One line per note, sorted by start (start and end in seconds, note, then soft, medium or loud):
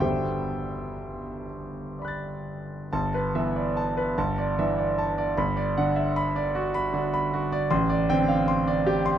0.00 2.86 G1 soft
0.00 2.87 D3 soft
0.00 2.87 B3 soft
0.00 2.88 F#4 soft
0.00 1.45 G4 soft
0.00 2.88 A4 soft
0.00 1.45 C5 soft
0.00 1.45 E5 soft
0.00 1.49 G5 medium
1.99 2.89 D5 soft
1.99 2.90 B5 soft
2.05 2.92 F#6 soft
2.05 2.94 A6 soft
2.93 3.34 G1 medium
2.93 3.27 A5 medium
3.14 3.48 B4 medium
3.35 4.14 E3 medium
3.35 4.14 B3 medium
3.35 3.69 E5 medium
3.56 3.77 D5 medium
3.77 4.10 A5 medium
3.97 4.18 B4 medium
4.18 4.57 G1 medium
4.18 4.50 A5 medium
4.38 4.70 D5 medium
4.59 5.34 E3 medium
4.59 5.34 D4 medium
4.59 4.90 E5 medium
4.78 4.98 D5 medium
4.98 5.30 A5 medium
5.18 5.38 D5 medium
5.38 5.76 G1 medium
5.38 5.69 B5 medium
5.57 5.88 D5 medium
5.78 6.90 D3 medium
5.78 6.90 D4 medium
5.78 6.08 F#5 medium
5.96 6.16 E5 medium
6.16 6.47 B5 medium
6.36 6.67 D5 medium
6.55 6.86 F#4 medium
6.74 7.05 B5 medium
6.94 7.67 D3 medium
6.94 7.68 D4 medium
6.94 7.25 F#4 medium
7.14 7.45 B5 medium
7.33 7.64 F#4 medium
7.52 7.72 D5 medium
7.70 8.08 A1 medium
7.70 8.02 C6 medium
7.90 8.21 D5 medium
8.10 9.18 D3 medium
8.10 9.18 C4 medium
8.10 8.40 G5 medium
8.28 8.48 F5 medium
8.48 8.79 C6 medium
8.67 8.98 D5 medium
8.87 9.17 G4 medium
9.06 9.18 C6 medium